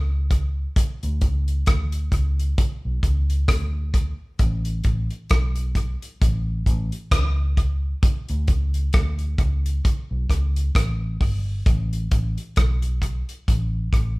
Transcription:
0.00 0.66 C#2 medium
0.31 kick loud
0.31 closed hi-hat medium
0.76 kick loud
0.76 closed hi-hat medium
1.03 1.20 D2 loud
1.03 closed hi-hat medium
1.21 1.62 C#2 medium
1.21 kick medium
1.21 closed hi-hat medium
1.48 closed hi-hat medium
1.66 2.08 D2 medium
1.66 kick loud
1.66 cross-stick loud
1.66 closed hi-hat medium
1.92 closed hi-hat medium
2.12 2.53 C#2 medium
2.12 kick medium
2.12 closed hi-hat medium
2.40 closed hi-hat medium
2.58 kick loud
2.58 closed hi-hat medium
2.85 3.02 B1 medium
3.03 3.43 C#2 medium
3.03 kick medium
3.03 closed hi-hat medium
3.30 closed hi-hat medium
3.48 4.12 D2 medium
3.48 kick loud
3.48 cross-stick loud
3.48 closed hi-hat medium
3.94 kick loud
3.94 closed hi-hat medium
4.39 4.80 A1 medium
4.39 kick loud
4.39 closed hi-hat medium
4.65 closed hi-hat medium
4.84 5.08 A1 medium
4.84 kick medium
4.84 closed hi-hat medium
5.10 closed hi-hat medium
5.29 5.94 B1 medium
5.29 kick loud
5.29 cross-stick loud
5.29 closed hi-hat medium
5.56 closed hi-hat medium
5.75 kick medium
5.75 closed hi-hat medium
6.02 closed hi-hat medium
6.22 6.62 A1 loud
6.22 kick loud
6.22 closed hi-hat medium
6.66 6.89 A1 loud
6.66 kick medium
6.66 closed hi-hat medium
6.92 closed hi-hat medium
7.11 7.92 C#2 medium
7.11 kick loud
7.11 cross-stick loud
7.11 closed hi-hat medium
7.57 kick medium
7.57 closed hi-hat medium
8.03 kick loud
8.03 closed hi-hat medium
8.29 8.47 D2 loud
8.29 closed hi-hat medium
8.48 8.89 C#2 medium
8.48 kick medium
8.48 closed hi-hat medium
8.74 closed hi-hat medium
8.93 9.34 D2 medium
8.93 kick loud
8.93 cross-stick loud
8.93 closed hi-hat medium
9.19 closed hi-hat soft
9.38 9.79 C#2 medium
9.38 kick medium
9.38 closed hi-hat medium
9.66 closed hi-hat medium
9.85 kick loud
9.85 closed hi-hat medium
10.11 10.28 B1 medium
10.30 10.70 C#2 medium
10.30 kick medium
10.30 cross-stick medium
10.30 closed hi-hat medium
10.56 closed hi-hat medium
10.75 11.16 A1 medium
10.75 kick loud
10.75 cross-stick loud
10.75 closed hi-hat loud
11.21 11.61 G1 medium
11.21 kick loud
11.21 open hi-hat medium
11.66 12.07 A1 loud
11.66 kick loud
11.66 closed hi-hat medium
11.93 closed hi-hat medium
12.11 12.35 A1 medium
12.11 kick medium
12.11 closed hi-hat medium
12.38 closed hi-hat medium
12.56 13.21 B1 medium
12.56 kick loud
12.56 cross-stick loud
12.56 closed hi-hat medium
12.82 closed hi-hat medium
13.02 kick medium
13.02 closed hi-hat medium
13.29 closed hi-hat medium
13.48 13.89 A1 medium
13.48 kick medium
13.48 closed hi-hat medium
13.93 14.16 A1 medium
13.93 kick medium
13.93 cross-stick medium
13.93 closed hi-hat medium

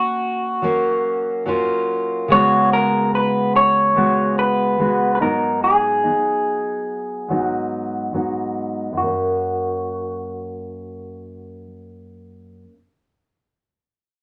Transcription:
0.00 0.63 A#3 soft
0.00 0.64 C#4 soft
0.00 1.43 F#4 medium
0.62 1.45 F#3 medium
0.62 1.45 A#3 medium
0.62 1.47 C#4 medium
1.46 2.30 F#3 medium
1.46 2.29 A#3 medium
1.46 2.33 C#4 medium
1.46 2.30 F4 medium
2.28 3.94 C#3 medium
2.28 3.96 G#3 medium
2.28 3.97 B3 medium
2.28 2.73 C#5 medium
2.33 3.98 F#4 medium
2.73 3.15 A#4 medium
3.15 3.56 B4 medium
3.56 4.38 C#5 medium
3.95 4.77 C#3 medium
3.95 4.79 G#3 medium
3.95 4.80 B3 medium
3.95 4.81 F#4 medium
4.39 5.14 B4 medium
4.78 5.20 C#3 soft
4.78 5.21 G#3 medium
4.78 5.20 B3 medium
4.78 5.20 F#4 medium
5.15 5.21 B4 medium
5.21 6.05 G#2 soft
5.21 6.06 F#3 medium
5.21 6.04 B3 medium
5.21 6.02 D#4 medium
5.21 5.60 A#4 medium
5.64 7.46 G#4 medium
6.04 7.30 F#3 soft
6.04 7.30 B3 soft
6.04 7.29 D#4 soft
7.28 8.12 G#2 medium
7.28 8.13 F#3 medium
7.28 8.13 B3 medium
7.28 8.14 D#4 medium
7.46 8.51 F#4 medium
8.13 8.92 G#2 medium
8.13 11.64 F#3 medium
8.13 8.97 B3 medium
8.13 8.98 D#4 medium
8.93 12.63 F#2 medium
8.97 12.64 F#4 medium
9.02 12.73 A#3 medium
9.07 12.77 C#4 medium

